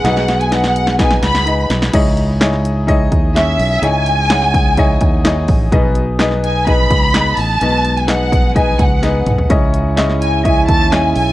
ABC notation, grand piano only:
X:1
M:4/4
L:1/8
Q:1/4=127
K:C#m
V:1 name="Grand piano"
[DGBd]2 [DGBf]2 [DGBd]2 [DGBd]2 | [DEGcd]2 [DEGcd]2 [DEGcd]2 [CEGce]2 | [DEGcd]2 [DEGcf]2 [DEGcd]2 [DEGcd]2 | [B,DGBd]2 [B,DGBd]2 [B,DGBd]2 [B,DGBd]2 |
[G,B,DBd]2 [B,DGBd]2 [B,DGBd]2 [B,DGBd]2 | [CEGcd]2 [CEGcd]2 [EGcde]2 [CEGcd]2 |]
V:2 name="Grand piano" clef=bass
B,,3 z4 z | G,,3 z4 z | G,,3 z4 z | B,,3 z4 z |
B,,3 z4 z | G,,3 z4 z |]